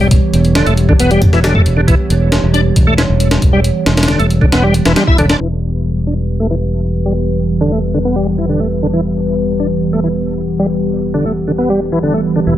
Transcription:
Already playing: E1 E3 G3 B3 G4 C#5
0.01 G3
0.11 kick, closed hi-hat
0.33 E1, closed hi-hat
0.45 closed hi-hat
0.55 D3, snare, closed hi-hat
0.66 E1 A3, closed hi-hat
0.77 closed hi-hat
0.89 D3, kick
0.99 E1 B3, closed hi-hat
1.11 G3, closed hi-hat
1.22 kick, closed hi-hat
1.33 E1 E3, snare
1.44 D3, snare, closed hi-hat
1.55 A3, kick
1.66 E1, closed hi-hat
1.77 D3
1.88 E3, kick, closed hi-hat
2.10 E1, closed hi-hat
2.32 snare, closed hi-hat
2.43 E1
2.54 D4, closed hi-hat
2.76 E1, kick, closed hi-hat
2.87 A3
2.98 E3, snare, closed hi-hat
3.09 E1
3.20 closed hi-hat
3.31 snare, closed hi-hat
3.42 E1, kick, closed hi-hat
3.53 G3
3.64 closed hi-hat
3.86 E1, snare, closed hi-hat
3.97 snare, closed hi-hat
4.03 snare, closed hi-hat
4.08 D3, snare, closed hi-hat
4.19 E1 A3, closed hi-hat
4.30 closed hi-hat
4.41 D3, kick
4.52 E1 B3, snare, closed hi-hat
4.63 G3
4.74 closed hi-hat
4.85 E1 E3, snare, closed hi-hat
4.96 G3, snare, closed hi-hat
5.07 E4, kick
5.18 E1 D3, closed hi-hat
5.29 D4, snare, closed hi-hat
5.40 E1 E3 G3 B3 G4 B4
6.07 D4
6.40 A3
6.50 E3
7.06 G3
7.61 D3
7.72 A3
7.94 D3
8.05 B3
8.16 G3
8.38 E3
8.49 D3
8.60 A3
8.83 D3
8.93 E3
9.60 D4
9.93 A3
10.04 E3
10.59 G3
11.14 D3
11.25 A3
11.48 D3
11.58 B3
11.70 G3
11.92 E3
12.03 D3
12.14 A3
12.36 D3
12.46 E1 E3 A4

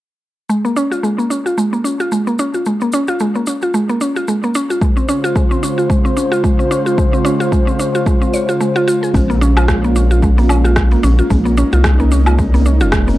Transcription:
0.49 G#3, shaker
0.65 A#3, shaker
0.76 C#4, shaker
0.92 F4, shaker
1.03 G#3, shaker
1.18 A#3, shaker
1.30 C#4, shaker
1.46 F4, shaker
1.58 G#3, shaker
1.73 A#3, shaker
1.84 C#4, shaker
2.00 F4, shaker
2.12 G#3, shaker
2.27 A#3, shaker
2.39 C#4, shaker
2.54 F4, shaker
2.66 G#3, shaker
2.81 A#3, shaker
2.93 C#4, shaker
3.08 F4, shaker
3.20 G#3, shaker
3.35 A#3, shaker
3.47 C#4, shaker
3.62 F4, shaker
3.74 G#3, shaker
3.89 A#3, shaker
4.01 C#4, shaker
4.16 F4, shaker
4.28 G#3, shaker
4.43 A#3, shaker
4.55 C#4, shaker
4.70 F4, shaker
4.81 C#3 G#3 F4 C5, kick, shaker
4.97 C4, shaker
5.09 C#4, shaker
5.24 F4, shaker
5.36 G#3, kick, shaker
5.51 C4, shaker
5.63 C#4, shaker
5.78 F4, shaker
5.90 G#3, kick, shaker
6.05 C4, shaker
6.17 C#4, shaker
6.32 F4, shaker
6.44 G#3, kick, shaker
6.59 C4, shaker
6.71 C#4, shaker
6.86 F4, shaker
6.98 G#3, kick, shaker
7.13 C4, shaker
7.25 C#4, shaker
7.40 F4, shaker
7.52 G#3, kick, shaker
7.67 C4, shaker
7.79 C#4, shaker
7.95 F4, shaker
8.06 G#3, kick, shaker
8.22 C4, shaker
8.34 C#5, shaker
8.49 F4, shaker
8.61 G#3, shaker
8.76 F4, shaker
8.88 F4, shaker
9.03 G#4, shaker
9.14 A#1 G#3 A#3 C#4 F4, kick, djembe bass, shaker
9.30 A#3, djembe slap, shaker
9.41 C#4, djembe slap, shaker
9.57 F4, low woodblock, shaker
9.68 G#3, kick, cross-stick, shaker
9.84 A#3, shaker
9.96 C#4, djembe tone, shaker
10.11 F4, shaker
10.22 G#3, kick, shaker
10.38 A#3, djembe tone, shaker
10.49 C#4, low woodblock, shaker
10.64 F4, cross-stick, shaker
10.76 G#3, kick, cross-stick, shaker
10.91 A#3, djembe slap, shaker
11.03 A#1 C#4, djembe bass, shaker
11.19 F4, shaker
11.30 A#1 G#3 D#4, kick, djembe bass, shaker
11.45 A#3, djembe slap, shaker
11.57 C#4, shaker
11.73 C2 F4, shaker
11.84 G#3, kick, cross-stick, shaker
12.00 A#3, shaker
12.12 C#4, djembe tone, shaker
12.26 F4, low woodblock, shaker
12.39 G#3, kick, djembe tone, shaker
12.54 A#3, djembe tone, djembe bass, shaker
12.66 C#4, shaker
12.81 F1 F4, shaker
12.92 G#3, kick, cross-stick, shaker
13.08 A#3, djembe bass, shaker

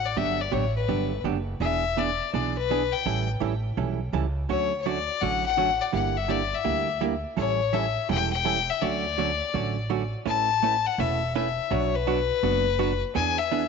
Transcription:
Already playing: A1
0.05 D5
0.16 G1 D3 F#3 B3 D4 G4 E5
0.41 D5
0.52 A1 D3 F#3 B3 D4 G4 C#5
0.76 B4
0.88 G1 D3 F#3 B3 D4 G4
1.24 F#1 D3 F#3 B3 D4 G4
1.60 E1 E3 B3 D4 G#4 E5
1.97 E3 B3 D4 G#4 D5
2.33 B1 E3 B3 D4 G#4 D5
2.58 B4
2.70 E3 B3 D4 G#4
2.92 G5
3.06 A1 E3 G3 C#4 E4 A4
3.40 A1 E3 G3 C#4 E4 A4
3.77 B1 E3 G3 C#4 E4 A4
4.13 C#2 E3 G3 C#4 E4 A4
4.49 D2 D3 F#3 A3 C#4 F#4 C#5
4.81 C#5
4.86 D3 F#3 A3 C#4 F#4 D5
5.21 A1 D3 F#3 A3 C#4 F#4 F#5
5.46 F#5
5.57 D3 F#3 A3 C#4 F#4
5.81 D5
5.93 G1 D3 G3 A#3 E4 G4 F#5
6.17 E5
6.28 D3 G3 A#3 E4 G4 D5
6.54 E5
6.64 D2 D3 G3 A#3 E4 G4
7.01 D3 G3 A#3 E4 G4
7.37 A1 E3 G3 C#4 E4 A4 C#5
7.73 E3 G3 C#4 E4 A4 E5
8.09 E1 E3 G3 C#4 E4 A4 G5
8.32 G5
8.45 E3 G3 C#4 E4 A4
8.70 E5
8.82 D2 D3 F#3 A3 C#4 F#4 D5
9.18 D3 F#3 A3 C#4 F#4
9.54 A1 D3 F#3 A3 C#4 F#4
9.90 D3 F#3 A3 C#4 F#4
10.26 A1 A3 C#4 E4 B4 A5
10.63 A3 C#4 E4 B4
10.86 F#5
10.98 E1 A3 C#4 E4 B4 E5
11.35 A3 C#4 E4 B4 E5
11.71 B1 B2 F#3 B3 D4 F#4 C#5
11.95 B4
12.07 B2 F#3 B3 D4 F#4
12.43 F#1 B2 F#3 B3 D4 F#4
12.79 B2 F#3 B3 D4 F#4
13.15 E2 E3 B3 D4 G#4 G#5
13.39 E5
13.51 E3 B3 D4 G#4

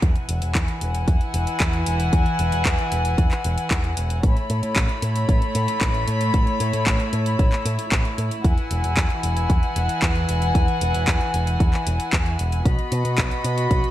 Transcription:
0.02 E2 E3 E4 F#5 G#5, kick, closed hi-hat
0.16 closed hi-hat
0.29 E1, closed hi-hat
0.42 E1, closed hi-hat
0.55 E2, kick, clap, closed hi-hat
0.68 closed hi-hat
0.81 E1, closed hi-hat
0.95 closed hi-hat
1.08 E2, kick, closed hi-hat
1.21 closed hi-hat
1.34 E1, closed hi-hat
1.47 closed hi-hat
1.60 E2, kick, clap, closed hi-hat
1.73 closed hi-hat
1.86 E1, closed hi-hat
2.00 closed hi-hat
2.13 E2, kick, closed hi-hat
2.26 closed hi-hat
2.39 E1, closed hi-hat
2.52 E1, closed hi-hat
2.65 E2, kick, clap, closed hi-hat
2.79 closed hi-hat
2.92 E1, closed hi-hat
3.05 closed hi-hat
3.18 E2, kick, closed hi-hat
3.31 clap, closed hi-hat
3.44 E1, closed hi-hat
3.58 closed hi-hat
3.71 E2, kick, clap, closed hi-hat
3.84 closed hi-hat
3.97 E1, closed hi-hat
4.10 closed hi-hat
4.23 A1 A3 E4 C#5 B5, kick, closed hi-hat
4.37 closed hi-hat
4.50 A2, closed hi-hat
4.63 A2, closed hi-hat
4.76 A1, kick, clap, closed hi-hat
4.89 closed hi-hat
5.02 A2, closed hi-hat
5.16 closed hi-hat
5.29 A1, kick, closed hi-hat
5.42 closed hi-hat
5.55 A2, closed hi-hat
5.68 closed hi-hat
5.81 A1, kick, clap, closed hi-hat
5.94 closed hi-hat
6.08 A2, closed hi-hat
6.21 closed hi-hat
6.34 A1, kick, closed hi-hat
6.47 closed hi-hat
6.60 A2, closed hi-hat
6.73 A2, closed hi-hat
6.87 A1, kick, clap, closed hi-hat
7.00 closed hi-hat
7.13 A2, closed hi-hat
7.26 closed hi-hat
7.39 A1, kick, closed hi-hat
7.52 clap, closed hi-hat
7.65 A2, closed hi-hat
7.79 closed hi-hat
7.92 A1, kick, clap, closed hi-hat
8.05 closed hi-hat
8.18 A2, closed hi-hat
8.31 closed hi-hat
8.44 E2 E3 F#5 G#5, kick, closed hi-hat
8.58 closed hi-hat
8.71 E1, closed hi-hat
8.84 E1, closed hi-hat
8.97 E2, kick, clap, closed hi-hat
9.10 closed hi-hat
9.23 E1, closed hi-hat
9.37 closed hi-hat
9.50 E2, kick, closed hi-hat
9.63 closed hi-hat
9.76 E1, closed hi-hat
9.89 closed hi-hat
10.02 E2, kick, clap, closed hi-hat
10.16 closed hi-hat
10.29 E1, closed hi-hat
10.42 closed hi-hat
10.55 E2, kick, closed hi-hat
10.68 closed hi-hat
10.81 E1, closed hi-hat
10.94 E1, closed hi-hat
11.08 E2, kick, clap, closed hi-hat
11.21 closed hi-hat
11.34 E1, closed hi-hat
11.47 closed hi-hat
11.60 E2, kick, closed hi-hat
11.74 clap, closed hi-hat
11.87 E1, closed hi-hat
12.00 closed hi-hat
12.13 E2, kick, clap, closed hi-hat
12.26 closed hi-hat
12.39 E1, closed hi-hat
12.52 closed hi-hat
12.65 B1 B3 F#4 D#5 B5, kick, closed hi-hat
12.79 closed hi-hat
12.92 B2, closed hi-hat
13.05 B2, closed hi-hat
13.18 B1, kick, clap, closed hi-hat
13.31 closed hi-hat
13.44 B2, closed hi-hat
13.58 closed hi-hat
13.71 B1, kick, closed hi-hat
13.84 closed hi-hat

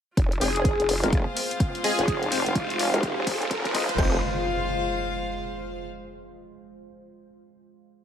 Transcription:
0.17 F1 G#3 F4 C5, kick, closed hi-hat, riser
0.32 C5, closed hi-hat
0.41 F1 G#3 C4 F4 G#4 C5, open hi-hat
0.56 closed hi-hat
0.65 kick, closed hi-hat
0.80 F1, closed hi-hat
0.89 F5, open hi-hat
1.03 F1 G#3 C4 F4 A#4, closed hi-hat
1.13 kick, closed hi-hat
1.37 open hi-hat
1.51 closed hi-hat
1.60 kick, closed hi-hat
1.75 closed hi-hat
1.84 G#3 C4 F4 G#4 D#5, open hi-hat
1.99 F1, closed hi-hat
2.08 kick, closed hi-hat
2.23 closed hi-hat
2.32 G#3 C4 F4 C5, open hi-hat
2.46 F1, closed hi-hat
2.55 kick, closed hi-hat
2.70 closed hi-hat
2.79 open hi-hat
2.94 F1 G#3 C4 F4 A#4, closed hi-hat
3.03 kick, closed hi-hat
3.18 F1
3.27 kick, open hi-hat
3.42 closed hi-hat
3.51 F1, kick, closed hi-hat
3.65 kick, closed hi-hat
3.75 G#1 G#3 C4 F4 D#5, kick, open hi-hat
3.89 kick, closed hi-hat
3.98 F1 G#3 C4 F4 C5, kick, crash, impact
4.07 C5
4.15 F5

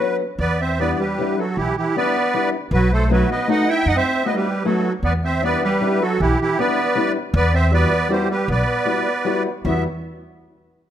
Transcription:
Already playing: F#4 B4
0.00 F#3 B3 D4 F#4
0.39 E2 B3 B4 D5
0.60 C4 C5 E5
0.79 G3 B3 D4 E4 B4 D5
0.99 G3 G4 B4
1.19 G3 B3 D4 E4
1.38 F#3 F#4 A4
1.57 B1 E3 E4 G4
1.77 E3 E4 G4
1.96 G3 B3 D4 E4 B4 D5
2.34 G3 B3 D4 E4
2.71 B1 F#3 F#4 B4
2.92 A3 A4 C5
3.10 F#3 A3 B3 D#4 F#4 B4
3.30 B3 B4 D#5
3.47 A3 B3 D#4 F#4 D#5 F#5
3.67 E4 E5 G5
3.86 F#2 D#4 D#5 F#5
3.95 C4 C5 E5
4.24 A3 B3 D#4 F#4 B4 D#5
4.34 G3 G4 B4
4.64 F#3 A3 B3 D#4 F#4 A4
5.03 E2 B3 B4 D5
5.24 C4 C5 E5
5.42 G3 B3 D4 E4 B4 D5
5.63 G3 G4 B4
5.81 G3 B3 D4 E4
6.01 F#3 F#4 A4
6.19 B1 E3 E4 G4
6.40 E3 E4 G4
6.58 G3 B3 D4 E4 B4 D5
6.95 G3 B3 D4 E4
7.34 E2 B3 B4 D5
7.53 C4 C5 E5
7.71 G3 B3 E4 F#4 B4 D5
8.09 G3 B3 E4 F#4 G4 C5
8.30 G3 G4 B4
8.48 B1 B3 B4 D5
8.85 G3 B3 E4 F#4
9.25 G3 B3 E4 F#4
9.65 E2 G3 B3 E4 F#4 E5

